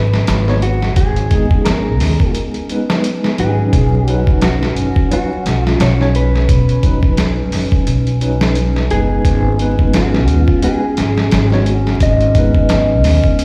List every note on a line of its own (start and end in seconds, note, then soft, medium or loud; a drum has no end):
0.00 0.25 G#1 medium
0.00 9.24 C#4 medium
0.00 0.62 B4 loud
0.14 snare medium
0.27 0.94 G#1 loud
0.27 snare loud
0.27 closed hi-hat medium
0.48 0.61 G#3 medium
0.48 0.61 B3 medium
0.48 0.61 D#4 medium
0.48 0.62 C#5 medium
0.48 snare soft
0.62 0.95 F#4 medium
0.62 closed hi-hat medium
0.82 snare soft
0.96 2.00 G#1 medium
0.96 1.64 G#4 medium
0.96 kick loud
0.96 closed hi-hat medium
1.16 closed hi-hat soft
1.31 2.65 G#3 medium
1.31 2.66 B3 medium
1.31 2.67 D#4 medium
1.31 2.67 G#4 medium
1.31 kick medium
1.31 closed hi-hat medium
1.51 kick loud
1.65 2.30 A#4 medium
1.65 snare loud
1.65 closed hi-hat medium
2.00 2.18 D#2 loud
2.00 snare soft
2.00 open hi-hat medium
2.20 kick medium
2.35 closed hi-hat medium
2.54 closed hi-hat soft
2.69 3.35 G#3 medium
2.69 3.35 B3 medium
2.69 3.36 D#4 medium
2.69 3.36 B4 medium
2.69 closed hi-hat medium
2.90 snare loud
3.04 closed hi-hat medium
3.24 snare medium
3.38 3.69 G#1 medium
3.38 4.04 F#3 medium
3.38 4.04 C#4 medium
3.38 4.04 D#4 medium
3.38 4.09 G#4 medium
3.38 4.04 B4 medium
3.38 closed hi-hat medium
3.73 4.76 B1 medium
3.73 kick loud
3.73 closed hi-hat medium
4.06 5.07 F#3 medium
4.06 5.07 C#4 medium
4.06 5.08 D#4 medium
4.06 4.38 F#4 medium
4.06 5.08 B4 medium
4.06 closed hi-hat medium
4.27 kick medium
4.41 5.12 F#4 medium
4.41 snare loud
4.41 closed hi-hat medium
4.63 snare medium
4.76 4.94 F#1 medium
4.76 closed hi-hat medium
4.96 kick loud
5.11 5.28 F#3 medium
5.11 5.29 C#4 medium
5.11 5.29 D#4 medium
5.11 5.62 F#4 medium
5.11 5.29 B4 medium
5.11 closed hi-hat medium
5.46 5.76 B1 medium
5.46 snare medium
5.46 closed hi-hat medium
5.62 5.81 F4 medium
5.67 snare medium
5.80 6.46 B1 loud
5.80 6.15 C#5 loud
5.80 snare loud
5.80 closed hi-hat medium
6.00 6.13 F#3 medium
6.00 6.13 C#4 medium
6.00 6.13 D#4 medium
6.00 6.13 C#5 loud
6.00 snare soft
6.15 7.14 B4 loud
6.15 closed hi-hat medium
6.35 snare soft
6.49 7.52 B1 loud
6.49 kick loud
6.49 closed hi-hat medium
6.69 closed hi-hat soft
6.82 8.17 F#3 medium
6.82 8.18 C#4 medium
6.82 8.18 D#4 medium
6.82 8.19 B4 medium
6.82 kick medium
6.82 closed hi-hat medium
7.03 kick medium
7.17 snare loud
7.17 closed hi-hat medium
7.52 7.69 F#1 loud
7.52 snare soft
7.52 open hi-hat medium
7.72 kick loud
7.87 8.87 B1 medium
7.87 closed hi-hat medium
8.07 closed hi-hat soft
8.21 8.86 F#3 medium
8.21 8.87 C#4 medium
8.21 8.87 D#4 medium
8.21 8.87 B4 medium
8.21 closed hi-hat medium
8.41 snare loud
8.55 closed hi-hat medium
8.76 snare soft
8.90 9.21 F#1 medium
8.90 9.55 G#3 medium
8.90 9.56 B3 medium
8.90 9.56 D#4 medium
8.90 9.56 G#4 loud
8.90 9.56 B4 medium
8.90 closed hi-hat medium
9.25 10.29 G#1 medium
9.25 13.45 C#4 medium
9.25 kick loud
9.25 closed hi-hat medium
9.58 10.58 G#3 medium
9.58 10.59 B3 medium
9.58 10.60 D#4 medium
9.58 10.60 B4 medium
9.58 closed hi-hat medium
9.79 kick medium
9.93 10.41 F#4 medium
9.93 snare loud
9.93 closed hi-hat medium
10.14 snare medium
10.28 10.46 D#2 medium
10.28 closed hi-hat medium
10.41 10.60 F4 medium
10.48 kick medium
10.62 10.80 G#3 medium
10.62 10.80 B3 medium
10.62 10.80 D#4 medium
10.62 11.54 G#4 medium
10.62 10.81 B4 medium
10.62 closed hi-hat medium
10.97 11.29 G#1 medium
10.97 snare medium
10.97 closed hi-hat medium
11.18 snare medium
11.31 11.98 G#1 loud
11.31 snare loud
11.31 closed hi-hat medium
11.52 11.64 G#3 medium
11.52 11.65 B3 medium
11.52 11.65 D#4 medium
11.52 11.97 F#4 medium
11.52 11.65 C#5 loud
11.52 snare soft
11.66 closed hi-hat medium
11.87 snare soft
12.00 13.04 G#1 medium
12.00 13.36 D#5 medium
12.00 kick loud
12.00 closed hi-hat medium
12.21 closed hi-hat soft
12.35 13.45 G#3 medium
12.35 13.45 B3 medium
12.35 13.45 D#4 medium
12.35 13.45 B4 medium
12.35 kick medium
12.35 closed hi-hat medium
12.55 kick medium
12.69 snare loud
12.69 closed hi-hat medium
13.04 13.21 D#2 loud
13.04 snare soft
13.04 open hi-hat medium
13.24 kick loud
13.39 closed hi-hat medium